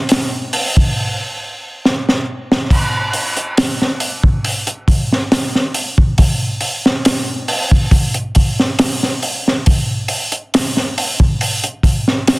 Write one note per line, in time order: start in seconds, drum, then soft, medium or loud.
0.09 snare loud
0.09 open hi-hat medium
0.53 open hi-hat medium
0.77 kick loud
1.85 snare medium
2.09 snare medium
2.52 snare medium
2.70 kick loud
2.70 open hi-hat medium
2.70 crash medium
3.13 open hi-hat medium
3.37 closed hi-hat soft
3.57 snare loud
3.57 open hi-hat medium
3.82 snare soft
4.00 open hi-hat medium
4.23 kick medium
4.45 open hi-hat medium
4.67 closed hi-hat soft
4.88 kick loud
4.88 open hi-hat medium
5.12 snare soft
5.32 snare loud
5.32 open hi-hat medium
5.55 snare soft
5.74 open hi-hat medium
5.98 kick medium
6.18 kick loud
6.18 open hi-hat medium
6.61 open hi-hat medium
6.86 snare medium
7.05 snare loud
7.05 open hi-hat medium
7.48 open hi-hat medium
7.71 kick medium
7.91 kick loud
7.91 open hi-hat medium
8.14 closed hi-hat soft
8.35 kick medium
8.35 open hi-hat medium
8.60 snare soft
8.79 snare loud
8.79 open hi-hat medium
9.03 snare soft
9.23 open hi-hat medium
9.48 snare soft
9.66 kick loud
9.66 open hi-hat medium
10.08 open hi-hat medium
10.32 closed hi-hat soft
10.54 snare loud
10.54 open hi-hat medium
10.77 snare soft
10.98 open hi-hat medium
11.20 kick loud
11.41 open hi-hat medium
11.64 closed hi-hat soft
11.83 kick medium
11.83 open hi-hat medium
12.08 snare soft
12.27 snare loud
12.27 open hi-hat medium